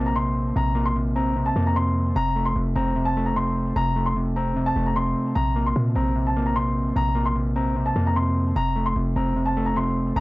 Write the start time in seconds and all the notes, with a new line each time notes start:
Already playing: A#1 C3 A#3 C4
0.06 A#5
0.16 C3 C6
0.56 A#1 C3 A#5
0.75 A#3
0.86 C6
0.96 C3
1.16 C4 A#5
1.36 C3
1.46 A5
1.56 F2 A#3
1.67 A#5
1.76 C3 C6
2.16 F1 C3 A#5
2.36 A3
2.45 C6
2.56 F1 C3
2.76 F1 C4 A#5
2.96 C3
3.05 A5
3.17 A3
3.26 A#5
3.36 C3 C6
3.76 F1 C3 A#5
3.96 A3
4.06 C6
4.16 C3
4.36 C4 A#5
4.56 C3
4.66 A5
4.76 F1 A3
4.86 A#5
4.96 C3 C6
5.35 A#1 C3 A#5
5.56 A#3
5.66 C6
5.76 A#2 C3
5.95 A#1 C4 A#5
6.16 C3
6.27 A5
6.37 A#3
6.46 A#5
6.56 C3 C6
6.96 A#1 C3 A#5
7.15 A#3
7.26 C6
7.36 C3
7.56 C4 A#5
7.76 C3
7.86 A5
7.96 F2 A#3
8.07 A#5
8.16 C3 C6
8.56 F1 C3 A#5
8.76 A3
8.86 C6
8.96 F1 C3
9.16 F1 C4 A#5
9.36 C3
9.45 A5
9.57 A3
9.66 A#5
9.76 C3 C6
10.16 F1 C3 A#5